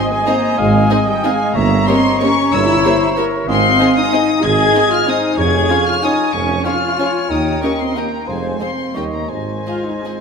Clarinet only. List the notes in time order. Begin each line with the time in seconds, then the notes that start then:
Already playing: D#5
0.27 C5
0.59 F5
0.91 D#5
1.25 F5
1.56 E5
1.88 D#5
2.52 C#5
2.85 C5
3.17 A#4
3.48 F5
4.13 D#5
5.08 C5
5.40 C#5
5.70 F5
6.03 G#5
6.33 G#5
6.65 F5
6.99 C#5
7.63 D#5
7.97 G5
8.27 C5
8.96 D#5
9.30 C5